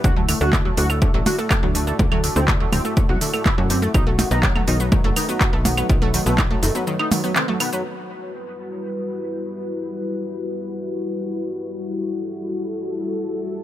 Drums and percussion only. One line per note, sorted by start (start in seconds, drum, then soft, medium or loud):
0.04 kick loud
0.04 shaker medium
0.29 open hi-hat loud
0.29 claves medium
0.29 shaker medium
0.41 shaker medium
0.53 kick loud
0.53 clap loud
0.53 percussion blips loud
0.53 shaker medium
0.77 open hi-hat loud
0.77 shaker medium
0.90 claves medium
0.90 shaker medium
1.02 kick loud
1.02 shaker medium
1.26 open hi-hat loud
1.26 percussion blips loud
1.26 shaker medium
1.39 shaker medium
1.51 kick loud
1.51 clap loud
1.51 claves medium
1.51 shaker medium
1.75 open hi-hat loud
1.75 shaker medium
1.87 shaker medium
1.99 kick loud
1.99 percussion blips medium
1.99 shaker medium
2.12 claves medium
2.24 open hi-hat loud
2.24 shaker medium
2.36 shaker medium
2.48 kick loud
2.48 clap loud
2.48 shaker medium
2.73 open hi-hat loud
2.73 percussion blips loud
2.73 claves medium
2.73 shaker medium
2.85 shaker medium
2.97 kick loud
2.97 shaker medium
3.21 open hi-hat loud
3.21 shaker medium
3.34 claves medium
3.34 shaker medium
3.46 kick loud
3.46 clap loud
3.46 percussion blips loud
3.46 shaker medium
3.70 open hi-hat loud
3.70 shaker medium
3.82 shaker medium
3.94 kick loud
3.94 claves medium
3.94 shaker medium
4.19 open hi-hat loud
4.19 percussion blips loud
4.19 shaker medium
4.31 shaker medium
4.43 kick loud
4.43 clap loud
4.43 shaker medium
4.56 claves medium
4.68 open hi-hat loud
4.68 shaker medium
4.80 shaker medium
4.92 kick loud
4.92 percussion blips loud
4.92 shaker medium
5.16 open hi-hat loud
5.16 claves medium
5.16 shaker medium
5.29 shaker medium
5.41 kick loud
5.41 clap loud
5.41 shaker medium
5.65 open hi-hat loud
5.65 percussion blips loud
5.65 shaker medium
5.78 claves medium
5.78 shaker medium
5.90 kick loud
5.90 shaker medium
6.14 open hi-hat loud
6.14 shaker medium
6.26 shaker medium
6.38 kick loud
6.38 clap loud
6.38 percussion blips loud
6.38 claves medium
6.38 shaker medium
6.63 open hi-hat loud
6.63 shaker medium
6.75 shaker medium
6.87 shaker medium
6.99 claves medium
7.12 open hi-hat loud
7.12 percussion blips loud
7.12 shaker medium
7.24 shaker medium
7.36 clap loud
7.36 shaker medium
7.60 open hi-hat loud
7.60 claves medium
7.60 shaker medium
7.73 shaker medium